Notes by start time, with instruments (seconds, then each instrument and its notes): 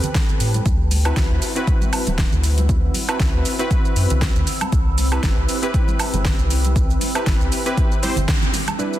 Already playing: synth keys C4 G4 A4 B4, ambient pad B4 G5 A5
0.04 closed hi-hat, low conga, shaker
0.15 kick, snare, closed hi-hat, shaker
0.29 low conga, shaker
0.40 analog synth bass A2, open hi-hat, shaker
0.54 closed hi-hat, high conga, shaker
0.66 analog synth bass D2, ambient pad C4 F#5 B5 E6, kick, closed hi-hat, shaker
0.91 open hi-hat, high conga, shaker
1.05 synth keys C4 E4 F#4 B4, closed hi-hat, high woodblock, shaker
1.17 analog synth bass C2, kick, snare, closed hi-hat, shaker
1.31 analog synth bass D2
1.42 open hi-hat, shaker
1.55 synth keys C4 E4 F#4 B4, closed hi-hat, shaker
1.67 kick, closed hi-hat, shaker
1.82 high conga, shaker
1.93 open hi-hat, high woodblock, shaker
2.07 analog synth bass D1, closed hi-hat, high conga, low conga, shaker
2.18 kick, snare, closed hi-hat, shaker
2.32 analog synth bass D2, low conga, shaker
2.44 open hi-hat, shaker
2.58 closed hi-hat, high conga, shaker
2.69 kick, closed hi-hat, shaker
2.94 open hi-hat, high conga, shaker
3.08 synth keys C4 E4 F#4 B4, closed hi-hat, high woodblock, shaker
3.20 analog synth bass C2, kick, snare, closed hi-hat, shaker
3.34 analog synth bass D2
3.45 open hi-hat, shaker
3.59 synth keys C4 E4 F#4 B4, closed hi-hat, shaker
3.71 kick, closed hi-hat, shaker
3.85 shaker
3.96 analog synth bass F#2, open hi-hat, shaker
4.10 analog synth bass C2, closed hi-hat, low conga, shaker
4.22 kick, snare, closed hi-hat, shaker
4.36 analog synth bass D2, low conga, shaker
4.47 ambient pad G5, open hi-hat, shaker
4.61 closed hi-hat, high conga, high woodblock, shaker
4.72 analog synth bass C2, kick, closed hi-hat, shaker
4.98 open hi-hat, high conga, shaker
5.12 synth keys C4 E4 G4 B4, closed hi-hat, high woodblock, shaker
5.23 analog synth bass G1, kick, snare, closed hi-hat, shaker
5.37 analog synth bass C2
5.49 open hi-hat, shaker
5.62 synth keys C4 E4 G4 B4, closed hi-hat, shaker
5.74 kick, closed hi-hat, shaker
5.88 high conga, shaker
6.00 open hi-hat, high woodblock, shaker
6.14 analog synth bass G1, closed hi-hat, high conga, low conga, shaker
6.25 kick, snare, closed hi-hat, shaker
6.39 analog synth bass C2, low conga, shaker
6.50 open hi-hat, shaker
6.65 closed hi-hat, high conga, shaker
6.76 kick, closed hi-hat, shaker
6.90 shaker
7.01 open hi-hat, high conga, shaker
7.15 synth keys C4 E4 G4 B4, closed hi-hat, high woodblock, shaker
7.27 analog synth bass G1, kick, snare, closed hi-hat, shaker
7.41 analog synth bass C2, shaker
7.52 open hi-hat, shaker
7.66 synth keys C4 E4 G4 B4, closed hi-hat, shaker
7.77 kick, closed hi-hat, shaker
7.92 shaker
8.02 synth keys C4 E4 G4 C5, open hi-hat, high conga, shaker
8.16 analog synth bass G1, closed hi-hat, low conga, shaker
8.28 kick, snare, closed hi-hat, shaker
8.43 low conga, shaker
8.53 open hi-hat, high conga, shaker
8.68 closed hi-hat, high conga, high woodblock, shaker
8.79 synth keys G3 D4 E4 B4, ambient pad E4 D5 E5 B5, marimba B4, shaker
8.93 shaker